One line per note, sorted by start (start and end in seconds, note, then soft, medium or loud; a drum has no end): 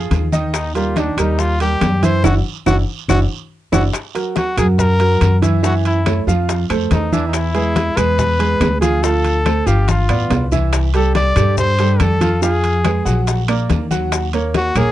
0.00 0.25 F3 medium
0.00 0.25 F4 medium
0.00 0.25 G#4 medium
0.11 1.11 D#2 medium
0.11 high bongo soft
0.11 low bongo medium
0.11 high conga medium
0.11 high timbale medium
0.11 short guiro medium
0.11 maracas soft
0.32 0.67 D#3 medium
0.32 0.67 D#4 medium
0.32 0.68 D#5 medium
0.32 high conga medium
0.32 short guiro medium
0.32 maracas medium
0.54 0.74 D#4 medium
0.54 high bongo medium
0.54 high conga soft
0.54 high timbale medium
0.54 long guiro medium
0.54 claves medium
0.54 maracas medium
0.75 0.93 G3 medium
0.75 0.95 F4 medium
0.75 0.93 G4 medium
0.75 0.93 A#4 medium
0.75 high conga soft
0.75 high timbale medium
0.75 maracas soft
0.96 1.14 D#3 medium
0.96 1.20 D4 medium
0.96 1.14 D#4 medium
0.96 1.14 D#5 medium
0.96 high bongo medium
0.96 high conga medium
0.96 high timbale medium
0.96 short guiro medium
0.96 maracas soft
1.17 1.77 D#2 medium
1.17 1.53 G3 medium
1.17 1.41 D#4 medium
1.17 1.53 G4 medium
1.17 1.53 A#4 medium
1.17 high bongo soft
1.17 high conga soft
1.17 high timbale medium
1.17 short guiro medium
1.17 claves medium
1.17 maracas medium
1.39 1.61 F4 medium
1.39 high bongo medium
1.39 high conga soft
1.39 long guiro medium
1.39 maracas medium
1.60 1.95 G3 medium
1.60 1.96 G4 medium
1.60 2.06 G4 medium
1.60 1.96 A#4 medium
1.60 high bongo soft
1.60 high conga soft
1.60 high timbale medium
1.60 maracas soft
1.81 2.21 F#2 medium
1.81 high bongo soft
1.81 low bongo medium
1.81 high conga medium
1.81 high timbale medium
1.81 low timbale medium
1.81 short guiro medium
1.81 claves medium
1.81 maracas soft
2.03 2.20 E3 medium
2.03 2.20 E4 medium
2.03 2.24 C5 medium
2.03 2.20 E5 medium
2.03 high conga medium
2.03 high timbale medium
2.03 short guiro medium
2.03 maracas medium
2.24 2.40 F#1 medium
2.24 2.38 D4 medium
2.24 2.38 E4 loud
2.24 2.38 F#4 medium
2.24 2.35 F#4 medium
2.24 low bongo medium
2.24 high conga medium
2.24 high timbale medium
2.24 long guiro medium
2.24 claves medium
2.24 maracas medium
2.66 2.82 F#1 medium
2.66 2.80 D4 medium
2.66 2.80 E4 medium
2.66 2.80 F#4 medium
2.66 2.77 F#4 medium
2.66 low bongo medium
2.66 high conga medium
2.66 high timbale medium
2.66 long guiro medium
2.66 claves medium
2.66 maracas medium
3.08 3.24 F#1 medium
3.08 3.23 D4 medium
3.08 3.23 E4 medium
3.08 3.19 F#4 medium
3.08 3.23 F#4 medium
3.08 low bongo medium
3.08 high conga medium
3.08 high timbale medium
3.08 long guiro medium
3.08 claves medium
3.08 maracas medium
3.72 3.88 F#1 medium
3.72 3.86 D4 medium
3.72 3.86 E4 medium
3.72 3.86 F#4 medium
3.72 3.83 F#4 medium
3.72 low bongo medium
3.72 high conga medium
3.72 high timbale medium
3.72 long guiro loud
3.72 claves medium
3.72 maracas medium
3.93 high bongo medium
3.93 high timbale medium
3.93 long guiro medium
3.93 claves medium
3.93 maracas medium
4.14 4.50 F#3 medium
4.14 4.50 F#4 medium
4.14 4.50 A#4 medium
4.14 high conga soft
4.14 high timbale medium
4.14 maracas soft
4.36 4.56 F#4 medium
4.36 high bongo medium
4.36 high conga loud
4.36 high timbale medium
4.36 short guiro medium
4.36 maracas soft
4.57 5.17 F#2 medium
4.57 4.92 F#3 medium
4.57 4.92 F#4 medium
4.57 4.68 G#4 medium
4.57 4.93 A#4 medium
4.57 high bongo soft
4.57 high conga soft
4.57 low conga medium
4.57 high timbale medium
4.57 short guiro medium
4.57 claves medium
4.57 maracas medium
4.79 5.39 A#4 loud
4.79 high bongo medium
4.79 high conga soft
4.79 low conga medium
4.79 long guiro medium
4.79 maracas medium
5.00 5.35 F#3 medium
5.00 5.35 F#4 medium
5.00 5.35 A#4 medium
5.00 high bongo soft
5.00 high conga soft
5.00 high timbale medium
5.00 maracas soft
5.21 6.21 F#2 medium
5.21 high bongo soft
5.21 low bongo medium
5.21 high conga medium
5.21 high timbale medium
5.21 short guiro medium
5.21 claves medium
5.21 maracas soft
5.42 5.60 E3 medium
5.42 5.60 E4 medium
5.42 5.60 E5 medium
5.42 high conga medium
5.42 high timbale medium
5.42 short guiro medium
5.42 maracas medium
5.63 5.98 E3 medium
5.63 5.98 E4 medium
5.63 5.74 F#4 medium
5.63 5.98 E5 medium
5.63 high bongo medium
5.63 long guiro medium
5.63 maracas medium
5.85 6.25 E4 medium
5.85 high conga soft
5.85 high timbale medium
5.85 maracas soft
6.06 6.23 A3 medium
6.06 6.24 A4 medium
6.06 6.24 C#5 medium
6.06 high bongo medium
6.06 high conga loud
6.06 high timbale medium
6.06 short guiro medium
6.06 claves medium
6.06 maracas soft
6.27 6.67 F2 medium
6.27 6.62 F3 medium
6.27 6.63 F4 medium
6.27 6.63 F5 medium
6.27 high bongo soft
6.27 short guiro medium
6.27 maracas medium
6.49 high bongo medium
6.49 high conga soft
6.49 high timbale medium
6.49 long guiro medium
6.49 maracas medium
6.70 6.90 F2 medium
6.70 7.05 A3 medium
6.70 7.05 A4 medium
6.70 7.05 C5 medium
6.70 high bongo soft
6.70 high conga soft
6.70 high timbale medium
6.70 claves medium
6.70 maracas soft
6.91 7.91 E2 medium
6.91 7.14 D#4 medium
6.91 high bongo soft
6.91 low bongo medium
6.91 high conga medium
6.91 high timbale medium
6.91 short guiro medium
6.91 maracas soft
7.12 7.47 E3 medium
7.12 7.27 D4 medium
7.12 7.47 E4 medium
7.12 7.47 E5 medium
7.12 high conga medium
7.12 short guiro medium
7.12 maracas medium
7.27 7.36 D#4 medium
7.33 7.99 E4 loud
7.33 high bongo medium
7.33 high conga soft
7.33 high timbale medium
7.33 long guiro medium
7.33 claves medium
7.33 maracas medium
7.54 7.89 G#3 medium
7.54 7.90 G#4 medium
7.54 7.90 B4 medium
7.54 high conga soft
7.54 high timbale medium
7.54 maracas soft
7.76 high bongo medium
7.76 high conga medium
7.76 high timbale medium
7.76 short guiro medium
7.76 maracas soft
7.97 8.57 E2 medium
7.97 8.32 G#3 medium
7.97 8.32 G#4 medium
7.97 8.80 B4 loud
7.97 8.33 B4 medium
7.97 high bongo soft
7.97 high conga soft
7.97 low conga medium
7.97 high timbale medium
7.97 short guiro medium
7.97 claves medium
7.97 maracas medium
8.18 high bongo medium
8.18 high conga soft
8.18 low conga medium
8.18 long guiro medium
8.18 maracas medium
8.39 8.74 G#3 medium
8.39 8.74 G#4 medium
8.39 8.75 B4 medium
8.39 high bongo soft
8.39 high conga soft
8.39 high timbale medium
8.39 maracas soft
8.60 9.61 D2 medium
8.60 high bongo soft
8.60 low bongo medium
8.60 high conga medium
8.60 high timbale medium
8.60 low timbale medium
8.60 short guiro medium
8.60 claves medium
8.60 maracas soft
8.81 8.99 F3 medium
8.81 8.99 F4 medium
8.81 9.04 G#4 medium
8.81 9.00 F5 medium
8.81 high conga medium
8.81 high timbale medium
8.81 short guiro medium
8.81 maracas medium
9.03 9.38 F3 medium
9.03 9.38 F4 medium
9.03 9.68 A4 loud
9.03 9.38 F5 medium
9.03 high bongo medium
9.03 high conga soft
9.03 long guiro medium
9.03 maracas medium
9.25 high conga soft
9.25 high timbale medium
9.25 maracas soft
9.45 9.63 A3 medium
9.45 9.63 A4 medium
9.45 9.63 C5 medium
9.45 high bongo medium
9.45 high conga loud
9.45 high timbale medium
9.45 short guiro medium
9.45 claves medium
9.45 maracas soft
9.66 10.06 G1 medium
9.66 10.02 F3 medium
9.66 10.02 F4 medium
9.66 9.90 G4 medium
9.66 10.02 F5 medium
9.66 high bongo soft
9.66 short guiro medium
9.66 maracas medium
9.88 10.52 F4 medium
9.88 high bongo medium
9.88 high conga medium
9.88 high timbale medium
9.88 long guiro medium
9.88 maracas medium
10.09 10.29 A1 medium
10.09 10.44 B3 medium
10.09 10.44 B4 medium
10.09 10.45 D5 medium
10.09 high bongo soft
10.09 low conga medium
10.09 high timbale medium
10.09 claves medium
10.09 maracas soft
10.30 11.30 C2 medium
10.30 high bongo soft
10.30 low bongo medium
10.30 low conga medium
10.30 high timbale medium
10.30 low timbale medium
10.30 short guiro medium
10.30 maracas soft
10.52 10.87 E3 medium
10.52 10.87 E4 medium
10.52 10.87 E5 medium
10.52 low conga medium
10.52 short guiro medium
10.52 maracas medium
10.73 high bongo medium
10.73 high conga soft
10.73 high timbale medium
10.73 long guiro medium
10.73 claves medium
10.73 maracas medium
10.94 11.29 G3 medium
10.94 11.29 G4 medium
10.94 11.29 A4 medium
10.94 11.15 A4 medium
10.94 high conga soft
10.94 high timbale medium
10.94 maracas soft
11.15 11.55 D5 loud
11.15 high bongo medium
11.15 high conga loud
11.15 high timbale medium
11.15 short guiro medium
11.15 maracas soft
11.36 11.96 G2 medium
11.36 11.71 G3 medium
11.36 11.71 G4 medium
11.36 11.72 A4 medium
11.36 high bongo soft
11.36 high conga soft
11.36 low conga medium
11.36 high timbale medium
11.36 short guiro medium
11.36 claves medium
11.36 maracas medium
11.57 12.02 C5 loud
11.57 high bongo medium
11.57 high conga soft
11.57 low conga medium
11.57 long guiro medium
11.57 maracas medium
11.78 12.14 G3 medium
11.78 12.14 G4 medium
11.78 12.14 A4 medium
11.78 high bongo soft
11.78 high conga soft
11.78 high timbale medium
11.78 maracas soft
12.00 13.00 F2 medium
12.00 12.42 A4 medium
12.00 high bongo soft
12.00 low bongo medium
12.00 high conga medium
12.00 high timbale medium
12.00 short guiro medium
12.00 claves medium
12.00 maracas soft
12.21 12.38 F3 medium
12.21 12.39 F4 medium
12.21 12.39 F5 medium
12.21 high conga medium
12.21 high timbale medium
12.21 short guiro medium
12.21 maracas medium
12.42 12.77 F3 medium
12.42 12.77 F4 medium
12.42 13.23 G#4 medium
12.42 12.77 F5 medium
12.42 high bongo medium
12.42 high conga soft
12.42 long guiro medium
12.42 maracas medium
12.64 high conga soft
12.64 high timbale medium
12.64 maracas soft
12.84 13.02 G#3 medium
12.84 13.02 G#4 medium
12.84 13.02 B4 medium
12.84 high bongo medium
12.84 high conga medium
12.84 high timbale medium
12.84 short guiro medium
12.84 claves medium
12.84 maracas soft
13.05 13.65 A#1 medium
13.05 13.40 F#3 medium
13.05 13.40 F#4 medium
13.05 13.40 F#5 medium
13.05 high bongo soft
13.05 short guiro medium
13.05 maracas medium
13.27 high bongo medium
13.27 high conga soft
13.27 high timbale medium
13.27 long guiro medium
13.27 maracas medium
13.48 13.83 A#3 medium
13.48 13.83 A#4 medium
13.48 13.83 D5 medium
13.48 high bongo soft
13.48 high conga soft
13.48 high timbale medium
13.48 claves medium
13.48 maracas soft
13.69 14.69 D#2 medium
13.69 high bongo soft
13.69 low bongo medium
13.69 high conga medium
13.69 high timbale medium
13.69 short guiro medium
13.69 maracas soft
13.91 14.25 F#3 medium
13.91 14.26 F#4 medium
13.91 14.26 F#5 medium
13.91 high conga medium
13.91 short guiro medium
13.91 maracas medium
14.12 high bongo medium
14.12 high conga soft
14.12 high timbale medium
14.12 long guiro medium
14.12 claves medium
14.12 maracas medium
14.33 14.68 A#3 medium
14.33 14.68 A#4 medium
14.33 14.68 C#5 medium
14.33 high conga soft
14.33 high timbale medium
14.33 maracas soft
14.54 14.79 F#4 loud
14.54 high bongo medium
14.54 high conga loud
14.54 high timbale medium
14.54 short guiro medium
14.54 maracas soft
14.75 14.92 A#1 medium
14.75 14.92 A#3 medium
14.75 14.92 G#4 loud
14.75 14.92 A#4 medium
14.75 14.92 C#5 medium
14.75 high bongo soft
14.75 high conga soft
14.75 low conga medium
14.75 high timbale medium
14.75 short guiro medium
14.75 claves medium
14.75 maracas medium